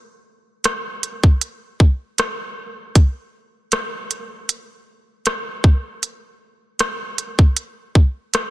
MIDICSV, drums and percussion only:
0, 0, Header, 1, 2, 480
1, 0, Start_track
1, 0, Tempo, 769231
1, 1843, Time_signature, 4, 2, 24, 8
1, 5305, End_track
2, 0, Start_track
2, 0, Title_t, "Drums"
2, 402, Note_on_c, 9, 42, 76
2, 408, Note_on_c, 9, 37, 105
2, 464, Note_off_c, 9, 42, 0
2, 470, Note_off_c, 9, 37, 0
2, 644, Note_on_c, 9, 42, 65
2, 706, Note_off_c, 9, 42, 0
2, 771, Note_on_c, 9, 36, 87
2, 833, Note_off_c, 9, 36, 0
2, 883, Note_on_c, 9, 42, 82
2, 945, Note_off_c, 9, 42, 0
2, 1123, Note_on_c, 9, 36, 83
2, 1186, Note_off_c, 9, 36, 0
2, 1363, Note_on_c, 9, 42, 67
2, 1369, Note_on_c, 9, 37, 101
2, 1425, Note_off_c, 9, 42, 0
2, 1432, Note_off_c, 9, 37, 0
2, 1844, Note_on_c, 9, 36, 103
2, 1844, Note_on_c, 9, 42, 72
2, 1906, Note_off_c, 9, 36, 0
2, 1907, Note_off_c, 9, 42, 0
2, 2321, Note_on_c, 9, 42, 81
2, 2327, Note_on_c, 9, 37, 107
2, 2383, Note_off_c, 9, 42, 0
2, 2389, Note_off_c, 9, 37, 0
2, 2563, Note_on_c, 9, 42, 64
2, 2625, Note_off_c, 9, 42, 0
2, 2802, Note_on_c, 9, 42, 79
2, 2865, Note_off_c, 9, 42, 0
2, 3280, Note_on_c, 9, 42, 66
2, 3287, Note_on_c, 9, 37, 104
2, 3343, Note_off_c, 9, 42, 0
2, 3349, Note_off_c, 9, 37, 0
2, 3519, Note_on_c, 9, 36, 93
2, 3582, Note_off_c, 9, 36, 0
2, 3762, Note_on_c, 9, 42, 65
2, 3824, Note_off_c, 9, 42, 0
2, 4240, Note_on_c, 9, 42, 73
2, 4246, Note_on_c, 9, 37, 107
2, 4302, Note_off_c, 9, 42, 0
2, 4308, Note_off_c, 9, 37, 0
2, 4482, Note_on_c, 9, 42, 64
2, 4545, Note_off_c, 9, 42, 0
2, 4610, Note_on_c, 9, 36, 85
2, 4672, Note_off_c, 9, 36, 0
2, 4721, Note_on_c, 9, 42, 81
2, 4783, Note_off_c, 9, 42, 0
2, 4963, Note_on_c, 9, 36, 79
2, 5025, Note_off_c, 9, 36, 0
2, 5202, Note_on_c, 9, 42, 65
2, 5208, Note_on_c, 9, 37, 103
2, 5264, Note_off_c, 9, 42, 0
2, 5271, Note_off_c, 9, 37, 0
2, 5305, End_track
0, 0, End_of_file